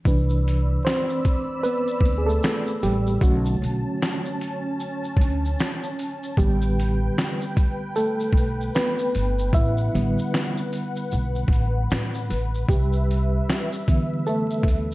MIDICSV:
0, 0, Header, 1, 5, 480
1, 0, Start_track
1, 0, Tempo, 789474
1, 35, Time_signature, 4, 2, 24, 8
1, 9085, End_track
2, 0, Start_track
2, 0, Title_t, "Analog synth pad"
2, 0, Program_c, 0, 89
2, 22, Note_on_c, 0, 74, 81
2, 23, Note_on_c, 0, 83, 68
2, 23, Note_on_c, 0, 88, 85
2, 1929, Note_off_c, 0, 74, 0
2, 1930, Note_off_c, 0, 83, 0
2, 1930, Note_off_c, 0, 88, 0
2, 1949, Note_on_c, 0, 81, 72
2, 1952, Note_on_c, 0, 61, 81
2, 3853, Note_off_c, 0, 81, 0
2, 3855, Note_off_c, 0, 61, 0
2, 3871, Note_on_c, 0, 71, 83
2, 3875, Note_on_c, 0, 79, 70
2, 5776, Note_off_c, 0, 79, 0
2, 5799, Note_on_c, 0, 78, 76
2, 7698, Note_off_c, 0, 78, 0
2, 7708, Note_on_c, 0, 76, 75
2, 9085, Note_off_c, 0, 71, 0
2, 9085, Note_off_c, 0, 76, 0
2, 9085, End_track
3, 0, Start_track
3, 0, Title_t, "Reed electric piano"
3, 0, Program_c, 1, 4
3, 41, Note_on_c, 1, 52, 55
3, 44, Note_on_c, 1, 71, 51
3, 48, Note_on_c, 1, 62, 60
3, 160, Control_c, 1, 64, 127
3, 515, Note_on_c, 1, 72, 104
3, 529, Note_on_c, 1, 60, 82
3, 734, Note_off_c, 1, 52, 0
3, 735, Note_off_c, 1, 71, 0
3, 737, Note_off_c, 1, 62, 0
3, 978, Note_off_c, 1, 60, 0
3, 993, Note_on_c, 1, 71, 95
3, 1006, Note_on_c, 1, 59, 78
3, 1010, Note_off_c, 1, 72, 0
3, 1302, Note_off_c, 1, 71, 0
3, 1309, Note_off_c, 1, 59, 0
3, 1325, Note_on_c, 1, 68, 63
3, 1376, Note_off_c, 1, 68, 0
3, 1377, Note_on_c, 1, 69, 90
3, 1392, Note_on_c, 1, 57, 70
3, 1700, Note_off_c, 1, 57, 0
3, 1721, Note_on_c, 1, 67, 89
3, 1726, Note_off_c, 1, 69, 0
3, 1733, Note_on_c, 1, 55, 68
3, 1948, Note_off_c, 1, 55, 0
3, 1961, Note_on_c, 1, 66, 79
3, 1964, Control_c, 1, 64, 0
3, 1965, Note_off_c, 1, 67, 0
3, 1965, Note_on_c, 1, 50, 51
3, 1968, Note_on_c, 1, 57, 44
3, 1971, Note_on_c, 1, 61, 62
3, 1973, Note_on_c, 1, 54, 64
3, 2069, Control_c, 1, 64, 127
3, 2296, Note_off_c, 1, 50, 0
3, 2297, Note_off_c, 1, 57, 0
3, 2298, Note_off_c, 1, 61, 0
3, 3374, Note_off_c, 1, 66, 0
3, 3380, Note_off_c, 1, 54, 0
3, 3877, Note_on_c, 1, 67, 79
3, 3883, Note_on_c, 1, 50, 58
3, 3884, Control_c, 1, 64, 0
3, 3885, Note_on_c, 1, 55, 67
3, 3889, Note_on_c, 1, 59, 56
3, 3988, Control_c, 1, 64, 127
3, 4575, Note_off_c, 1, 50, 0
3, 4578, Note_off_c, 1, 59, 0
3, 4818, Note_off_c, 1, 55, 0
3, 4839, Note_on_c, 1, 69, 96
3, 4848, Note_on_c, 1, 57, 75
3, 4865, Note_off_c, 1, 67, 0
3, 5297, Note_off_c, 1, 57, 0
3, 5322, Note_on_c, 1, 71, 92
3, 5330, Note_on_c, 1, 59, 76
3, 5331, Note_off_c, 1, 69, 0
3, 5778, Note_off_c, 1, 59, 0
3, 5803, Note_on_c, 1, 76, 96
3, 5813, Note_off_c, 1, 71, 0
3, 5813, Note_on_c, 1, 64, 66
3, 6043, Note_on_c, 1, 50, 63
3, 6048, Note_on_c, 1, 55, 54
3, 6052, Note_on_c, 1, 59, 70
3, 6735, Note_off_c, 1, 76, 0
3, 6740, Note_off_c, 1, 64, 0
3, 7695, Note_off_c, 1, 50, 0
3, 7697, Note_off_c, 1, 55, 0
3, 7699, Note_off_c, 1, 59, 0
3, 7716, Note_on_c, 1, 67, 79
3, 7723, Control_c, 1, 64, 0
3, 7731, Note_on_c, 1, 55, 58
3, 7824, Control_c, 1, 64, 127
3, 8438, Note_on_c, 1, 50, 62
3, 8441, Note_on_c, 1, 52, 50
3, 8446, Note_on_c, 1, 59, 57
3, 8659, Note_off_c, 1, 55, 0
3, 8674, Note_on_c, 1, 69, 92
3, 8688, Note_on_c, 1, 57, 78
3, 8704, Note_off_c, 1, 67, 0
3, 8772, Note_off_c, 1, 50, 0
3, 8773, Note_off_c, 1, 52, 0
3, 8776, Note_off_c, 1, 59, 0
3, 9085, Note_off_c, 1, 57, 0
3, 9085, Note_off_c, 1, 69, 0
3, 9085, End_track
4, 0, Start_track
4, 0, Title_t, "Upright bass"
4, 0, Program_c, 2, 32
4, 36, Note_on_c, 2, 36, 105
4, 458, Note_off_c, 2, 36, 0
4, 1223, Note_on_c, 2, 38, 86
4, 1439, Note_off_c, 2, 38, 0
4, 1721, Note_on_c, 2, 33, 92
4, 1929, Note_off_c, 2, 33, 0
4, 1956, Note_on_c, 2, 35, 102
4, 2167, Note_off_c, 2, 35, 0
4, 2200, Note_on_c, 2, 35, 87
4, 2322, Note_off_c, 2, 35, 0
4, 3146, Note_on_c, 2, 38, 81
4, 3361, Note_off_c, 2, 38, 0
4, 3879, Note_on_c, 2, 33, 105
4, 4300, Note_off_c, 2, 33, 0
4, 5064, Note_on_c, 2, 35, 82
4, 5280, Note_off_c, 2, 35, 0
4, 5565, Note_on_c, 2, 31, 76
4, 5772, Note_off_c, 2, 31, 0
4, 5797, Note_on_c, 2, 33, 109
4, 6008, Note_off_c, 2, 33, 0
4, 6046, Note_on_c, 2, 33, 80
4, 6165, Note_off_c, 2, 33, 0
4, 6765, Note_on_c, 2, 35, 82
4, 6972, Note_off_c, 2, 35, 0
4, 6983, Note_on_c, 2, 33, 85
4, 7200, Note_off_c, 2, 33, 0
4, 7242, Note_on_c, 2, 45, 79
4, 7450, Note_off_c, 2, 45, 0
4, 7478, Note_on_c, 2, 33, 87
4, 7688, Note_off_c, 2, 33, 0
4, 7717, Note_on_c, 2, 36, 102
4, 8138, Note_off_c, 2, 36, 0
4, 8899, Note_on_c, 2, 38, 82
4, 9085, Note_off_c, 2, 38, 0
4, 9085, End_track
5, 0, Start_track
5, 0, Title_t, "Drums"
5, 32, Note_on_c, 9, 36, 118
5, 42, Note_on_c, 9, 82, 67
5, 93, Note_off_c, 9, 36, 0
5, 102, Note_off_c, 9, 82, 0
5, 180, Note_on_c, 9, 82, 42
5, 241, Note_off_c, 9, 82, 0
5, 291, Note_on_c, 9, 42, 57
5, 291, Note_on_c, 9, 82, 38
5, 351, Note_off_c, 9, 42, 0
5, 351, Note_off_c, 9, 82, 0
5, 527, Note_on_c, 9, 38, 109
5, 529, Note_on_c, 9, 82, 54
5, 532, Note_on_c, 9, 26, 83
5, 588, Note_off_c, 9, 38, 0
5, 590, Note_off_c, 9, 82, 0
5, 592, Note_off_c, 9, 26, 0
5, 667, Note_on_c, 9, 82, 50
5, 728, Note_off_c, 9, 82, 0
5, 760, Note_on_c, 9, 36, 91
5, 761, Note_on_c, 9, 42, 62
5, 761, Note_on_c, 9, 82, 47
5, 821, Note_off_c, 9, 36, 0
5, 822, Note_off_c, 9, 42, 0
5, 822, Note_off_c, 9, 82, 0
5, 997, Note_on_c, 9, 82, 49
5, 1057, Note_off_c, 9, 82, 0
5, 1142, Note_on_c, 9, 82, 38
5, 1203, Note_off_c, 9, 82, 0
5, 1219, Note_on_c, 9, 36, 75
5, 1248, Note_on_c, 9, 42, 62
5, 1248, Note_on_c, 9, 82, 46
5, 1280, Note_off_c, 9, 36, 0
5, 1309, Note_off_c, 9, 42, 0
5, 1309, Note_off_c, 9, 82, 0
5, 1394, Note_on_c, 9, 82, 36
5, 1455, Note_off_c, 9, 82, 0
5, 1479, Note_on_c, 9, 82, 61
5, 1484, Note_on_c, 9, 38, 111
5, 1489, Note_on_c, 9, 26, 93
5, 1540, Note_off_c, 9, 82, 0
5, 1545, Note_off_c, 9, 38, 0
5, 1550, Note_off_c, 9, 26, 0
5, 1625, Note_on_c, 9, 82, 54
5, 1686, Note_off_c, 9, 82, 0
5, 1721, Note_on_c, 9, 42, 64
5, 1721, Note_on_c, 9, 82, 50
5, 1782, Note_off_c, 9, 42, 0
5, 1782, Note_off_c, 9, 82, 0
5, 1867, Note_on_c, 9, 82, 51
5, 1927, Note_off_c, 9, 82, 0
5, 1953, Note_on_c, 9, 36, 108
5, 1964, Note_on_c, 9, 82, 68
5, 2014, Note_off_c, 9, 36, 0
5, 2025, Note_off_c, 9, 82, 0
5, 2102, Note_on_c, 9, 82, 46
5, 2163, Note_off_c, 9, 82, 0
5, 2211, Note_on_c, 9, 42, 53
5, 2211, Note_on_c, 9, 82, 40
5, 2272, Note_off_c, 9, 42, 0
5, 2272, Note_off_c, 9, 82, 0
5, 2447, Note_on_c, 9, 38, 97
5, 2448, Note_on_c, 9, 82, 51
5, 2451, Note_on_c, 9, 26, 82
5, 2508, Note_off_c, 9, 38, 0
5, 2509, Note_off_c, 9, 82, 0
5, 2512, Note_off_c, 9, 26, 0
5, 2588, Note_on_c, 9, 82, 49
5, 2649, Note_off_c, 9, 82, 0
5, 2684, Note_on_c, 9, 42, 67
5, 2684, Note_on_c, 9, 82, 43
5, 2744, Note_off_c, 9, 42, 0
5, 2744, Note_off_c, 9, 82, 0
5, 2919, Note_on_c, 9, 82, 48
5, 2980, Note_off_c, 9, 82, 0
5, 3065, Note_on_c, 9, 82, 37
5, 3126, Note_off_c, 9, 82, 0
5, 3141, Note_on_c, 9, 36, 81
5, 3169, Note_on_c, 9, 42, 63
5, 3169, Note_on_c, 9, 82, 43
5, 3202, Note_off_c, 9, 36, 0
5, 3230, Note_off_c, 9, 42, 0
5, 3230, Note_off_c, 9, 82, 0
5, 3315, Note_on_c, 9, 82, 35
5, 3375, Note_off_c, 9, 82, 0
5, 3402, Note_on_c, 9, 82, 61
5, 3407, Note_on_c, 9, 38, 107
5, 3412, Note_on_c, 9, 26, 95
5, 3463, Note_off_c, 9, 82, 0
5, 3468, Note_off_c, 9, 38, 0
5, 3473, Note_off_c, 9, 26, 0
5, 3546, Note_on_c, 9, 82, 49
5, 3606, Note_off_c, 9, 82, 0
5, 3643, Note_on_c, 9, 42, 72
5, 3643, Note_on_c, 9, 82, 49
5, 3704, Note_off_c, 9, 42, 0
5, 3704, Note_off_c, 9, 82, 0
5, 3789, Note_on_c, 9, 82, 46
5, 3850, Note_off_c, 9, 82, 0
5, 3875, Note_on_c, 9, 36, 109
5, 3885, Note_on_c, 9, 82, 62
5, 3935, Note_off_c, 9, 36, 0
5, 3946, Note_off_c, 9, 82, 0
5, 4023, Note_on_c, 9, 82, 47
5, 4084, Note_off_c, 9, 82, 0
5, 4132, Note_on_c, 9, 42, 56
5, 4132, Note_on_c, 9, 82, 39
5, 4193, Note_off_c, 9, 42, 0
5, 4193, Note_off_c, 9, 82, 0
5, 4367, Note_on_c, 9, 38, 108
5, 4368, Note_on_c, 9, 82, 52
5, 4371, Note_on_c, 9, 26, 87
5, 4428, Note_off_c, 9, 38, 0
5, 4429, Note_off_c, 9, 82, 0
5, 4432, Note_off_c, 9, 26, 0
5, 4508, Note_on_c, 9, 82, 46
5, 4569, Note_off_c, 9, 82, 0
5, 4602, Note_on_c, 9, 36, 95
5, 4603, Note_on_c, 9, 42, 65
5, 4603, Note_on_c, 9, 82, 49
5, 4662, Note_off_c, 9, 36, 0
5, 4664, Note_off_c, 9, 42, 0
5, 4664, Note_off_c, 9, 82, 0
5, 4839, Note_on_c, 9, 82, 50
5, 4900, Note_off_c, 9, 82, 0
5, 4986, Note_on_c, 9, 82, 41
5, 5046, Note_off_c, 9, 82, 0
5, 5062, Note_on_c, 9, 36, 82
5, 5091, Note_on_c, 9, 42, 59
5, 5091, Note_on_c, 9, 82, 46
5, 5123, Note_off_c, 9, 36, 0
5, 5152, Note_off_c, 9, 42, 0
5, 5152, Note_off_c, 9, 82, 0
5, 5235, Note_on_c, 9, 82, 34
5, 5296, Note_off_c, 9, 82, 0
5, 5320, Note_on_c, 9, 82, 59
5, 5325, Note_on_c, 9, 38, 107
5, 5330, Note_on_c, 9, 26, 92
5, 5381, Note_off_c, 9, 82, 0
5, 5386, Note_off_c, 9, 38, 0
5, 5391, Note_off_c, 9, 26, 0
5, 5464, Note_on_c, 9, 82, 54
5, 5525, Note_off_c, 9, 82, 0
5, 5562, Note_on_c, 9, 42, 72
5, 5562, Note_on_c, 9, 82, 53
5, 5623, Note_off_c, 9, 42, 0
5, 5623, Note_off_c, 9, 82, 0
5, 5708, Note_on_c, 9, 82, 53
5, 5769, Note_off_c, 9, 82, 0
5, 5794, Note_on_c, 9, 36, 115
5, 5803, Note_on_c, 9, 82, 67
5, 5855, Note_off_c, 9, 36, 0
5, 5864, Note_off_c, 9, 82, 0
5, 5944, Note_on_c, 9, 82, 50
5, 6004, Note_off_c, 9, 82, 0
5, 6051, Note_on_c, 9, 42, 54
5, 6051, Note_on_c, 9, 82, 38
5, 6112, Note_off_c, 9, 42, 0
5, 6112, Note_off_c, 9, 82, 0
5, 6193, Note_on_c, 9, 82, 41
5, 6254, Note_off_c, 9, 82, 0
5, 6287, Note_on_c, 9, 38, 112
5, 6289, Note_on_c, 9, 82, 58
5, 6292, Note_on_c, 9, 26, 82
5, 6348, Note_off_c, 9, 38, 0
5, 6350, Note_off_c, 9, 82, 0
5, 6353, Note_off_c, 9, 26, 0
5, 6429, Note_on_c, 9, 82, 50
5, 6489, Note_off_c, 9, 82, 0
5, 6523, Note_on_c, 9, 42, 67
5, 6523, Note_on_c, 9, 82, 47
5, 6583, Note_off_c, 9, 42, 0
5, 6583, Note_off_c, 9, 82, 0
5, 6664, Note_on_c, 9, 82, 42
5, 6725, Note_off_c, 9, 82, 0
5, 6759, Note_on_c, 9, 82, 47
5, 6820, Note_off_c, 9, 82, 0
5, 6904, Note_on_c, 9, 82, 42
5, 6965, Note_off_c, 9, 82, 0
5, 6980, Note_on_c, 9, 36, 82
5, 7008, Note_on_c, 9, 42, 54
5, 7008, Note_on_c, 9, 82, 39
5, 7041, Note_off_c, 9, 36, 0
5, 7069, Note_off_c, 9, 42, 0
5, 7069, Note_off_c, 9, 82, 0
5, 7240, Note_on_c, 9, 82, 61
5, 7246, Note_on_c, 9, 38, 113
5, 7250, Note_on_c, 9, 26, 93
5, 7301, Note_off_c, 9, 82, 0
5, 7307, Note_off_c, 9, 38, 0
5, 7311, Note_off_c, 9, 26, 0
5, 7385, Note_on_c, 9, 82, 50
5, 7446, Note_off_c, 9, 82, 0
5, 7481, Note_on_c, 9, 42, 71
5, 7481, Note_on_c, 9, 82, 54
5, 7542, Note_off_c, 9, 42, 0
5, 7542, Note_off_c, 9, 82, 0
5, 7629, Note_on_c, 9, 82, 52
5, 7690, Note_off_c, 9, 82, 0
5, 7712, Note_on_c, 9, 36, 122
5, 7724, Note_on_c, 9, 82, 66
5, 7773, Note_off_c, 9, 36, 0
5, 7785, Note_off_c, 9, 82, 0
5, 7861, Note_on_c, 9, 82, 48
5, 7922, Note_off_c, 9, 82, 0
5, 7970, Note_on_c, 9, 42, 56
5, 7970, Note_on_c, 9, 82, 37
5, 8031, Note_off_c, 9, 42, 0
5, 8031, Note_off_c, 9, 82, 0
5, 8205, Note_on_c, 9, 38, 103
5, 8207, Note_on_c, 9, 82, 49
5, 8210, Note_on_c, 9, 26, 81
5, 8266, Note_off_c, 9, 38, 0
5, 8268, Note_off_c, 9, 82, 0
5, 8271, Note_off_c, 9, 26, 0
5, 8346, Note_on_c, 9, 82, 54
5, 8407, Note_off_c, 9, 82, 0
5, 8438, Note_on_c, 9, 36, 86
5, 8440, Note_on_c, 9, 42, 68
5, 8440, Note_on_c, 9, 82, 43
5, 8499, Note_off_c, 9, 36, 0
5, 8501, Note_off_c, 9, 42, 0
5, 8501, Note_off_c, 9, 82, 0
5, 8675, Note_on_c, 9, 82, 49
5, 8736, Note_off_c, 9, 82, 0
5, 8820, Note_on_c, 9, 82, 41
5, 8881, Note_off_c, 9, 82, 0
5, 8897, Note_on_c, 9, 36, 89
5, 8925, Note_on_c, 9, 42, 60
5, 8925, Note_on_c, 9, 82, 42
5, 8958, Note_off_c, 9, 36, 0
5, 8986, Note_off_c, 9, 42, 0
5, 8986, Note_off_c, 9, 82, 0
5, 9085, End_track
0, 0, End_of_file